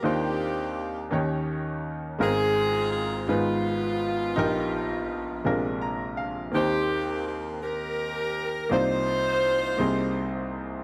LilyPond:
<<
  \new Staff \with { instrumentName = "Saxophone section" } { \time 6/8 \key ees \major \tempo 4. = 55 << { g'4. r4. | aes'4 aes'8 f'4.~ | f'2 r4 | g'4 g'8 bes'4. |
c''2~ c''8 r8 | } \\ { <bes c'>4. r4. | <c' f'>4. ces'4.~ | ces'2 r4 | <bes c'>4. g'4. |
<ees' f'>2~ <ees' f'>8 r8 | } >> }
  \new Staff \with { instrumentName = "Grand piano" } { \time 6/8 \key ees \major << { r2. | r2. | r2 bes''8 f''8 | r2. |
r2. | } \\ { <ees, ees bes d' ees' f' c''>4. <ees, ees bes des' ees' g' des''>4. | <aes,, aes, aes ces' c' ees' f' bes'>4. <aes,, aes, aes ces' ees' f' ces''>4. | <bes,, ees' g' bes'>4. <bes,, bes, c aes d' f' bes'>4. | <ees, ees bes c' ees' g' c''>2. |
<c, c bes ees' f' c'' d''>4. <c, c bes c' ees' aes' c''>4. | } >> }
>>